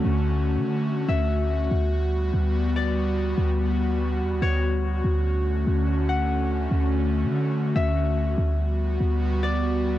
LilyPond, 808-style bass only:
\new Staff \with { instrumentName = "808-style bass" } { \clef bass \time 4/4 \key d \major \tempo 4 = 144 d,4~ d,16 d4~ d16 d,4. | d,4. d,2~ d,8 | d,2 e,16 d,16 d,4. | d,4. d,2~ d,8 |
d,4~ d,16 d4~ d16 d,4. | d,4. d,2~ d,8 | }